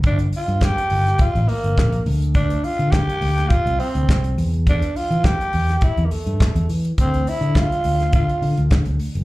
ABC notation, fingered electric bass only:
X:1
M:4/4
L:1/16
Q:1/4=104
K:Gdor
V:1 name="Fingered electric bass" clef=bass
G,,,2 z G,,2 z G,,,2 z A,,, z G,,, B,,,2 D,,2- | D,,2 z D,2 z D,,2 z C,, z D,, C,,2 E,,2- | E,,2 z E,2 z E,,2 z E,, z G,, z E,, E,2 | D,,2 z D,2 z D,,2 D, z D, D,, D, D,, z ^F,,, |]